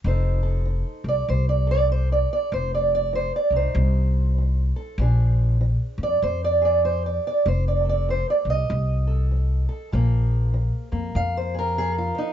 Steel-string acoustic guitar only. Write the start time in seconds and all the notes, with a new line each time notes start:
0.05 F2 F3 D#4 A4 C5
0.43 A4
0.65 F3
1.08 D5
1.29 C3 C5
1.49 D5
1.67 A4
1.71 D5
1.90 F3 C5
2.12 D5
2.33 D5
2.52 F2 C5
2.75 D5
2.95 D5
3.13 F3 C5
3.36 D5
3.52 D#4
3.56 C5
3.76 C3
4.38 F3
4.76 A4
4.99 A#2 F3 D4 G#4
5.61 F3
6.03 D5
6.23 F3 C5
6.45 D5
6.62 G#4 D5
6.84 F3 C5
7.06 D5
7.27 D5
7.46 F2 C5
7.68 D5
7.85 A4
7.89 D5
8.09 F3 C5
8.30 D5
8.50 D#5
8.69 C3
9.07 A4
9.31 F3
9.69 A4
9.92 A#2 F3 A#3 G#4
10.54 F3
10.92 A#3
11.15 F3 F5
11.37 C5
11.54 G#4
11.59 A#4
11.77 F3 G#4
11.98 F4
12.15 F3 D#4